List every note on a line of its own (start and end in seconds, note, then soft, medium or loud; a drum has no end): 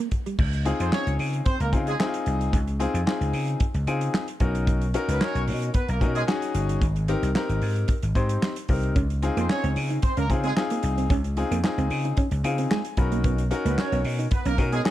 0.11 muted clean electric guitar stroke soft
0.11 kick medium
0.11 closed hi-hat medium
0.26 0.35 G3 medium
0.26 closed hi-hat soft
0.39 0.71 C#2 loud
0.39 kick loud
0.39 crash loud
0.53 closed hi-hat medium
0.65 1.39 C4 medium
0.65 1.39 D#4 medium
0.65 1.40 F4 medium
0.65 1.40 G#4 loud
0.65 closed hi-hat medium
0.79 0.90 F2 medium
0.79 0.90 C4 medium
0.79 0.90 C5 medium
0.79 closed hi-hat medium
0.92 1.14 C#4 medium
0.92 1.14 C#5 loud
0.92 snare loud
0.92 clap medium
1.07 1.17 C#2 medium
1.07 closed hi-hat soft
1.19 1.40 C#3 loud
1.19 open hi-hat medium
1.33 closed hi-hat soft
1.46 1.57 C4 medium
1.46 1.57 C5 loud
1.46 kick loud
1.46 closed hi-hat medium
1.60 1.74 C#2 medium
1.60 1.70 A#3 medium
1.60 1.70 A#4 medium
1.60 closed hi-hat medium
1.72 1.94 C#3 loud
1.72 1.91 C4 medium
1.72 1.91 D#4 medium
1.72 1.92 F4 medium
1.72 1.92 G#4 medium
1.72 kick medium
1.72 closed hi-hat medium
1.87 1.95 G#3 medium
1.87 1.95 G#4 loud
1.87 closed hi-hat medium
1.99 2.55 C4 loud
1.99 2.55 D#4 loud
1.99 2.06 E4 medium
1.99 2.55 G#4 loud
1.99 snare loud
1.99 clap medium
2.06 2.58 F4 loud
2.14 closed hi-hat medium
2.26 2.47 C2 medium
2.26 closed hi-hat medium
2.41 closed hi-hat soft
2.53 2.85 C#2 loud
2.53 kick loud
2.53 closed hi-hat medium
2.67 closed hi-hat soft
2.80 2.99 C4 loud
2.80 2.99 D#4 medium
2.80 2.99 F4 medium
2.80 2.99 G#4 loud
2.80 closed hi-hat medium
2.94 3.04 F2 loud
2.94 closed hi-hat medium
3.06 3.62 C4 medium
3.06 3.62 D#4 medium
3.06 3.62 F4 medium
3.06 3.62 G#4 loud
3.06 snare loud
3.06 clap medium
3.21 3.31 C#2 loud
3.21 closed hi-hat soft
3.33 3.54 C#3 medium
3.33 open hi-hat medium
3.48 closed hi-hat soft
3.60 kick loud
3.60 closed hi-hat medium
3.74 3.84 C#2 medium
3.74 closed hi-hat medium
3.87 4.08 C#3 loud
3.87 4.24 C4 medium
3.87 4.25 D#4 medium
3.87 4.25 F4 medium
3.87 4.25 G#4 loud
3.87 closed hi-hat medium
4.01 closed hi-hat medium
4.14 snare loud
4.14 clap medium
4.28 closed hi-hat medium
4.40 4.93 B1 loud
4.40 4.84 C#4 medium
4.40 4.84 D#4 medium
4.40 4.84 F#4 medium
4.40 4.84 A#4 medium
4.40 kick medium
4.40 closed hi-hat medium
4.55 closed hi-hat soft
4.67 kick loud
4.67 closed hi-hat medium
4.81 closed hi-hat soft
4.94 5.68 C#4 loud
4.94 5.68 D#4 medium
4.94 5.68 F#4 medium
4.94 5.69 A#4 loud
4.94 closed hi-hat medium
5.08 5.18 C#2 loud
5.08 5.18 B3 medium
5.08 5.18 B4 medium
5.08 closed hi-hat medium
5.21 5.42 C#4 loud
5.21 5.42 C#5 loud
5.21 snare loud
5.21 clap medium
5.35 5.49 B1 loud
5.35 closed hi-hat soft
5.48 5.69 B2 medium
5.48 open hi-hat medium
5.62 closed hi-hat soft
5.74 5.86 B3 medium
5.74 5.86 B4 medium
5.74 kick loud
5.74 closed hi-hat medium
5.88 6.03 B1 loud
5.88 5.99 A#3 medium
5.88 5.99 A#4 medium
5.88 closed hi-hat medium
6.01 6.22 B2 loud
6.01 6.20 C#4 medium
6.01 6.20 D#4 medium
6.01 6.20 F#4 medium
6.01 6.20 A#4 loud
6.01 kick medium
6.01 closed hi-hat medium
6.15 6.23 G#3 loud
6.15 6.23 G#4 loud
6.15 closed hi-hat medium
6.27 6.81 C#4 loud
6.27 6.81 D#4 loud
6.27 6.81 F#4 loud
6.27 6.82 G#4 loud
6.27 snare loud
6.27 clap loud
6.42 closed hi-hat medium
6.55 6.76 G1 medium
6.55 closed hi-hat medium
6.69 closed hi-hat medium
6.82 7.14 G#1 loud
6.82 kick loud
6.82 closed hi-hat medium
6.96 closed hi-hat soft
7.08 7.27 C4 loud
7.08 7.27 D#4 loud
7.08 7.28 G4 loud
7.08 7.28 A#4 loud
7.08 closed hi-hat medium
7.23 7.32 C2 medium
7.23 closed hi-hat medium
7.35 7.90 C4 medium
7.35 7.90 D#4 medium
7.35 7.91 G4 medium
7.35 7.91 A#4 loud
7.35 snare loud
7.35 clap medium
7.49 7.59 G#1 loud
7.49 closed hi-hat soft
7.62 7.83 G#2 medium
7.62 open hi-hat medium
7.76 closed hi-hat soft
7.88 kick loud
7.88 closed hi-hat medium
8.02 8.13 G#1 medium
8.02 closed hi-hat medium
8.15 8.36 G#2 medium
8.15 8.53 C4 medium
8.15 8.53 D#4 medium
8.15 8.53 G4 medium
8.15 8.53 C5 medium
8.15 kick medium
8.15 closed hi-hat medium
8.29 closed hi-hat medium
8.43 snare loud
8.43 clap loud
8.56 closed hi-hat medium
8.68 8.90 C2 medium
8.68 8.96 C4 medium
8.68 8.96 D#4 medium
8.68 8.96 G4 medium
8.68 8.96 A#4 medium
8.68 kick medium
8.68 open hi-hat medium
8.83 closed hi-hat soft
8.96 9.28 C#2 loud
8.96 9.05 C#4 medium
8.96 kick loud
8.96 closed hi-hat loud
9.10 closed hi-hat soft
9.22 9.97 C4 loud
9.22 9.97 D#4 medium
9.22 9.97 F4 medium
9.22 9.97 G#4 loud
9.22 muted clean electric guitar stroke soft
9.22 closed hi-hat medium
9.37 9.47 F2 loud
9.37 9.45 A#3 medium
9.37 9.47 C4 medium
9.37 9.47 C5 medium
9.37 closed hi-hat medium
9.50 9.71 C#4 loud
9.50 9.71 C#5 loud
9.50 snare loud
9.50 clap medium
9.64 9.74 C#2 medium
9.64 9.72 C4 medium
9.64 closed hi-hat soft
9.76 9.97 C#3 loud
9.76 muted clean electric guitar stroke soft
9.76 open hi-hat medium
9.90 9.99 D#4 medium
9.90 closed hi-hat soft
10.02 10.14 C4 medium
10.02 10.14 C5 loud
10.02 kick loud
10.02 closed hi-hat medium
10.17 10.31 C#2 medium
10.17 10.27 A#3 medium
10.17 10.26 C#4 medium
10.17 10.27 A#4 loud
10.17 closed hi-hat medium
10.30 10.51 C#3 loud
10.30 10.49 C4 medium
10.30 10.49 D#4 medium
10.30 10.49 F4 medium
10.30 10.49 G#4 loud
10.30 muted clean electric guitar stroke medium
10.30 kick medium
10.30 closed hi-hat medium
10.44 10.52 G#3 loud
10.44 10.53 C4 medium
10.44 10.52 G#4 loud
10.44 closed hi-hat medium
10.57 11.12 C4 loud
10.57 11.12 D#4 loud
10.57 11.12 F4 loud
10.57 11.12 G#4 loud
10.57 snare loud
10.57 clap medium
10.70 10.79 A#3 medium
10.70 closed hi-hat medium
10.83 11.04 C2 medium
10.83 muted clean electric guitar stroke soft
10.83 closed hi-hat medium
10.98 11.06 C4 medium
10.98 closed hi-hat soft
11.10 11.42 C#2 loud
11.10 11.20 C#4 medium
11.10 kick loud
11.10 closed hi-hat medium
11.24 closed hi-hat soft
11.37 11.56 C4 medium
11.37 11.56 D#4 medium
11.37 11.56 F4 medium
11.37 11.56 G#4 loud
11.37 muted clean electric guitar stroke soft
11.37 closed hi-hat medium
11.51 11.61 F2 loud
11.51 11.60 A#3 medium
11.51 closed hi-hat medium
11.64 12.19 C4 medium
11.64 12.19 D#4 medium
11.64 12.19 F4 medium
11.64 12.20 G#4 loud
11.64 snare loud
11.64 clap medium
11.78 11.88 C#2 loud
11.78 11.87 C4 medium
11.78 closed hi-hat soft
11.90 12.12 C#3 medium
11.90 muted clean electric guitar stroke soft
11.90 open hi-hat medium
12.05 12.14 D#4 medium
12.05 closed hi-hat soft
12.17 12.27 C#4 loud
12.17 kick loud
12.17 closed hi-hat medium
12.31 12.41 C#2 medium
12.31 closed hi-hat medium
12.44 12.65 C#3 loud
12.44 12.81 C4 medium
12.44 12.82 D#4 medium
12.44 12.82 F4 medium
12.44 12.82 G#4 medium
12.44 12.69 F5 medium
12.44 muted clean electric guitar stroke medium
12.44 closed hi-hat medium
12.58 12.67 C4 medium
12.58 closed hi-hat medium
12.71 12.81 G#3 loud
12.71 12.96 G#5 medium
12.71 snare loud
12.71 clap medium
12.85 closed hi-hat medium
12.97 13.51 B1 medium
12.97 13.41 C#4 medium
12.97 13.41 D#4 medium
12.97 13.41 F#4 medium
12.97 13.41 A#4 medium
12.97 13.23 B5 medium
12.97 muted clean electric guitar stroke soft
12.97 kick medium
12.97 closed hi-hat medium
13.12 13.20 A#3 medium
13.12 closed hi-hat soft
13.24 13.34 B3 medium
13.24 kick loud
13.24 closed hi-hat medium
13.38 closed hi-hat medium
13.51 14.25 C#4 loud
13.51 14.25 D#4 medium
13.51 14.25 F#4 medium
13.51 14.25 A#4 loud
13.51 muted clean electric guitar stroke soft
13.51 closed hi-hat medium
13.65 13.75 C#2 loud
13.65 13.74 A#3 medium
13.65 13.76 B3 medium
13.65 13.75 B4 medium
13.65 closed hi-hat medium
13.78 14.00 C#4 loud
13.78 14.00 C#5 loud
13.78 snare loud
13.78 clap medium
13.92 14.02 B1 loud
13.92 14.01 B3 medium
13.92 closed hi-hat soft
14.04 14.26 B2 loud
14.04 muted clean electric guitar stroke soft
14.04 open hi-hat medium
14.19 14.28 D#4 medium
14.19 closed hi-hat soft
14.31 14.43 B3 medium
14.31 14.43 B4 loud
14.31 kick loud
14.31 closed hi-hat medium
14.45 14.55 B1 medium
14.45 14.56 A#3 medium
14.45 14.54 C#4 medium
14.45 14.56 A#4 loud
14.45 closed hi-hat medium
14.58 14.79 B2 loud
14.58 14.77 C#4 medium
14.58 14.77 D#4 medium
14.58 14.77 F#4 medium
14.58 14.77 A#4 loud
14.58 muted clean electric guitar stroke soft
14.58 kick medium
14.58 closed hi-hat medium
14.72 14.80 G#3 medium
14.72 14.81 B3 medium
14.72 14.80 G#4 loud
14.72 closed hi-hat medium
14.85 14.91 C#4 loud
14.85 14.91 D#4 medium
14.85 14.91 F#4 medium
14.85 14.91 G#4 loud
14.85 snare loud
14.85 clap loud